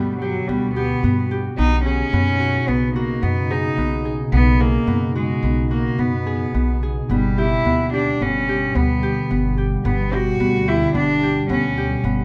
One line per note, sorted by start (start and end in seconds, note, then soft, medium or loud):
0.00 0.38 G2 medium
0.00 12.24 B2 medium
0.00 1.54 D3 medium
0.00 0.20 G3 medium
0.00 0.49 B3 medium
0.00 1.56 F#4 medium
0.00 0.21 G4 medium
0.20 0.49 F#3 medium
0.20 0.76 G4 medium
0.48 0.93 D2 medium
0.48 0.74 G3 medium
0.48 1.04 B3 medium
0.75 1.26 B3 medium
0.75 1.31 G4 medium
1.03 1.48 G2 medium
1.03 1.58 B3 medium
1.31 1.92 G4 medium
1.57 2.02 B1 medium
1.57 7.06 C#3 medium
1.57 2.13 B3 medium
1.57 7.05 D#4 medium
1.57 1.83 D#4 loud
1.85 2.69 C#4 loud
1.85 3.50 G#4 medium
2.13 2.57 F#2 medium
2.13 2.68 B3 medium
2.40 2.95 F#4 medium
2.68 3.12 B1 medium
2.68 2.94 B3 medium
2.68 3.22 B3 medium
2.95 3.24 A#3 medium
2.95 5.15 F#4 medium
3.22 3.67 F#2 medium
3.22 3.52 B3 medium
3.22 3.78 B3 medium
3.50 4.05 D#4 medium
3.50 4.05 G#4 medium
3.77 4.22 B1 medium
3.77 4.33 B3 medium
4.05 4.60 G#4 medium
4.32 4.77 B1 medium
4.32 4.87 B3 medium
4.32 4.63 B3 loud
4.60 5.15 A#3 loud
4.60 6.26 G#4 medium
4.87 5.32 F#2 medium
4.87 5.44 B3 medium
5.15 5.67 G#3 medium
5.15 5.70 F#4 medium
5.43 5.87 B1 medium
5.43 5.98 B3 medium
5.71 6.01 A#3 medium
5.71 7.44 F#4 medium
5.98 6.43 F#2 medium
5.98 6.54 B3 medium
5.98 6.83 B3 medium
6.26 6.82 G#4 medium
6.54 6.99 B1 medium
6.54 7.10 B3 medium
6.83 7.44 G#4 medium
7.10 7.55 G1 medium
7.10 12.24 D3 medium
7.10 7.40 G3 medium
7.10 12.24 G3 medium
7.10 7.66 B3 medium
7.38 7.93 E4 loud
7.38 7.93 G4 medium
7.65 8.10 D2 medium
7.65 8.21 B3 medium
7.94 8.24 D4 medium
7.94 8.48 G4 medium
8.21 8.65 G1 medium
8.21 8.75 B3 medium
8.21 8.78 C#4 medium
8.49 9.02 G4 medium
8.75 9.20 D2 medium
8.75 9.30 B3 medium
8.75 9.58 B3 medium
9.03 9.57 G4 medium
9.31 9.75 G1 medium
9.31 9.85 B3 medium
9.58 10.12 G4 medium
9.85 10.30 G1 loud
9.85 10.40 B3 medium
9.85 10.15 B3 medium
10.13 10.70 F#4 loud
10.13 10.67 G4 medium
10.40 10.84 D2 medium
10.40 10.94 B3 medium
10.68 10.95 E4 loud
10.68 11.23 G4 medium
10.94 11.39 G1 medium
10.94 11.49 B3 medium
10.94 11.46 D4 loud
11.23 11.77 G4 medium
11.49 11.94 D2 medium
11.49 12.04 B3 medium
11.49 12.24 C#4 medium
11.78 12.24 G4 medium
12.04 12.24 G1 medium
12.04 12.24 B3 medium